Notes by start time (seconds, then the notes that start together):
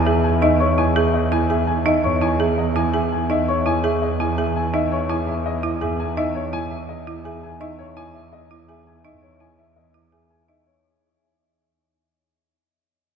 Already playing: E2 E4 G#5
0.06 G#4 E5 G#5
0.24 G#5
0.41 D#4 D#5 E5
0.60 C#5 C#6
0.78 E4 G#5
0.96 G#4 E5
1.14 D#5
1.32 E4 G#5
1.50 G#4 E5 G#5
1.67 G#5
1.86 D#4 D#5 E5
2.04 C#5 C#6
2.22 E4 G#5
2.40 G#4 E5
2.58 D#5
2.76 E4 G#5
2.94 G#4 E5 G#5
3.12 G#5
3.30 D#4 D#5 E5
3.48 C#5 C#6
3.66 E4 G#5
3.84 G#4 E5
4.02 D#5
4.20 E4 G#5
4.38 G#4 E5 G#5
4.56 G#5
4.74 D#4 D#5 E5
4.92 C#5 C#6
5.09 E4 G#5
5.27 E5
5.46 D#5
5.63 E4
5.81 G#4 E5 G#5
6.00 G#5
6.17 D#4 D#5 E5
6.35 C#5
6.53 E4 G#5
6.71 E5
6.89 D#5
7.07 E4
7.25 G#4 E5 G#5
7.43 G#5
7.60 D#4 D#5 E5
7.79 C#5
7.97 E4 G#5
8.14 E5
8.33 D#5
8.51 E4
8.69 G#4 E5 G#5
8.87 G#5
9.04 D#4 D#5 E5
9.22 C#5
9.40 E4 G#5
9.59 E5
9.76 D#5
9.94 E4
10.12 G#4 E5 G#5
10.30 G#5
10.48 D#4 D#5 E5
10.66 C#5